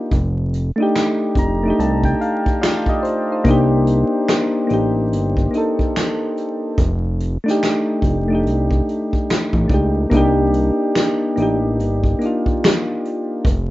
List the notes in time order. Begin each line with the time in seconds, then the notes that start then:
Already playing: A#3 D4 D#4 F4 G4
0.11 F1, kick, closed hi-hat
0.53 closed hi-hat
0.76 A3 D4
0.80 D#4 G4
0.96 finger snap, snare, closed hi-hat
1.35 F1 A#5, kick, closed hi-hat
1.63 A3 D4
1.68 D#4 G4
1.79 C2 A5, closed hi-hat
2.03 G5, kick
2.21 F5, closed hi-hat
2.46 kick
2.61 F4 D5 F5, finger snap, snare, closed hi-hat
2.86 G4 D#5, kick
3.03 C5, closed hi-hat
3.32 D#4 C5
3.44 C2 A#3 D4, kick, closed hi-hat
3.48 D#4 G4
3.87 closed hi-hat
4.29 finger snap, snare, closed hi-hat
4.67 A1 A#3 D4, closed hi-hat
4.71 D#4 G4
5.13 G1, closed hi-hat
5.37 kick
5.51 A#3 D4, closed hi-hat
5.55 D#4 A4
5.79 kick
5.96 finger snap, snare, closed hi-hat
6.37 closed hi-hat
6.78 F1, kick, closed hi-hat
7.20 closed hi-hat
7.44 A3 D4
7.48 D#4 G4, snare
7.63 finger snap, snare, closed hi-hat
8.02 F1, kick, closed hi-hat
8.28 A3 D4
8.33 D#4 G4
8.46 C2, closed hi-hat
8.71 kick
8.89 closed hi-hat
9.13 kick
9.30 finger snap, snare, closed hi-hat
9.53 A1, kick
9.68 C#2 A3 D4, kick, closed hi-hat
9.72 D#4 G4
10.10 C2 A#3 D4, kick, closed hi-hat
10.14 D#4 G4
10.54 closed hi-hat
10.95 finger snap, snare, closed hi-hat
11.36 A1 A#3 D4, closed hi-hat
11.40 D#4 G4
11.79 G1, closed hi-hat
12.04 kick
12.19 A#3 D4, closed hi-hat
12.23 D#4 F4
12.46 kick
12.64 finger snap, snare, closed hi-hat
13.05 closed hi-hat
13.45 F1, kick, closed hi-hat